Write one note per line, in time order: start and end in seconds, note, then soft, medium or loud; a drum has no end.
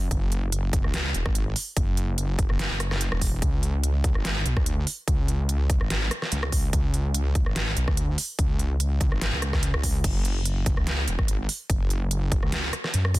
0.11 0.72 F#1 medium
0.11 kick loud
0.11 closed hi-hat medium
0.32 closed hi-hat medium
0.52 closed hi-hat medium
0.73 0.82 F#1 loud
0.73 kick loud
0.73 closed hi-hat medium
0.84 1.13 C#2 loud
0.84 cross-stick soft
0.94 snare loud
0.94 closed hi-hat medium
1.14 1.24 E1 loud
1.14 closed hi-hat medium
1.26 1.54 G#1 loud
1.26 kick medium
1.26 cross-stick soft
1.35 closed hi-hat medium
1.56 open hi-hat medium
1.77 2.37 F#1 medium
1.77 kick loud
1.77 closed hi-hat medium
1.97 closed hi-hat medium
2.18 closed hi-hat medium
2.39 2.48 F#1 loud
2.39 kick loud
2.39 closed hi-hat medium
2.50 2.69 F#1 loud
2.50 cross-stick medium
2.59 snare loud
2.59 closed hi-hat medium
2.70 3.10 F#1 medium
2.80 cross-stick medium
2.80 closed hi-hat medium
2.91 cross-stick medium
2.91 snare soft
3.01 closed hi-hat medium
3.12 3.41 E1 loud
3.12 cross-stick medium
3.21 kick medium
3.21 open hi-hat medium
3.42 4.03 C#2 loud
3.42 kick loud
3.42 closed hi-hat medium
3.63 closed hi-hat soft
3.84 closed hi-hat medium
4.04 4.13 C#2 loud
4.04 kick loud
4.04 closed hi-hat medium
4.15 4.44 G#1 loud
4.15 cross-stick medium
4.25 snare loud
4.25 closed hi-hat medium
4.45 4.55 B1 loud
4.45 closed hi-hat soft
4.57 4.85 D2 loud
4.57 kick medium
4.57 cross-stick medium
4.66 closed hi-hat medium
4.87 open hi-hat medium
5.08 5.68 C#2 loud
5.08 kick loud
5.08 closed hi-hat medium
5.28 closed hi-hat medium
5.49 closed hi-hat medium
5.70 5.79 C#2 loud
5.70 kick loud
5.70 closed hi-hat medium
5.81 6.10 G#1 loud
5.81 cross-stick medium
5.90 snare loud
5.90 closed hi-hat medium
6.11 cross-stick medium
6.11 closed hi-hat medium
6.22 cross-stick medium
6.22 snare soft
6.32 6.72 C#2 loud
6.32 closed hi-hat medium
6.43 cross-stick medium
6.52 kick medium
6.52 open hi-hat medium
6.73 7.34 C#2 loud
6.73 kick loud
6.73 closed hi-hat medium
6.94 closed hi-hat medium
7.14 closed hi-hat medium
7.35 7.45 C#2 loud
7.35 kick loud
7.35 closed hi-hat medium
7.46 7.75 G#1 loud
7.46 cross-stick medium
7.56 snare loud
7.56 closed hi-hat medium
7.77 7.86 B1 loud
7.77 closed hi-hat medium
7.88 8.16 D2 loud
7.88 kick medium
7.88 cross-stick medium
7.97 closed hi-hat medium
8.18 open hi-hat loud
8.39 8.99 C#2 loud
8.39 kick loud
8.39 closed hi-hat medium
8.59 closed hi-hat medium
8.80 closed hi-hat medium
9.01 9.10 C#2 loud
9.01 kick loud
9.01 closed hi-hat medium
9.12 9.31 G#1 loud
9.12 cross-stick medium
9.21 snare loud
9.21 closed hi-hat medium
9.33 9.72 C#2 loud
9.42 cross-stick medium
9.42 closed hi-hat medium
9.53 kick medium
9.53 cross-stick medium
9.53 snare soft
9.63 closed hi-hat medium
9.74 10.03 C#2 loud
9.74 cross-stick medium
9.83 kick medium
9.83 open hi-hat loud
10.04 10.65 F#1 loud
10.04 kick loud
10.04 closed hi-hat medium
10.04 crash medium
10.25 closed hi-hat medium
10.45 closed hi-hat medium
10.66 10.76 F#1 loud
10.66 kick loud
10.66 closed hi-hat medium
10.77 11.06 C#2 loud
10.77 cross-stick medium
10.87 snare loud
10.87 closed hi-hat medium
11.08 11.17 E1 loud
11.08 closed hi-hat medium
11.19 11.47 G#1 medium
11.19 kick medium
11.19 cross-stick medium
11.28 closed hi-hat medium
11.49 open hi-hat loud
11.70 12.30 F#1 loud
11.70 kick loud
11.70 closed hi-hat medium
11.90 closed hi-hat medium
12.11 closed hi-hat medium
12.32 12.41 F#1 loud
12.32 kick loud
12.32 closed hi-hat medium
12.43 12.72 C#2 loud
12.43 cross-stick medium
12.52 snare loud
12.52 closed hi-hat medium
12.73 cross-stick medium
12.73 closed hi-hat medium
12.84 cross-stick soft
12.84 snare soft
12.94 13.19 F#2 loud
12.94 closed hi-hat medium
13.05 cross-stick medium
13.14 kick medium
13.14 open hi-hat loud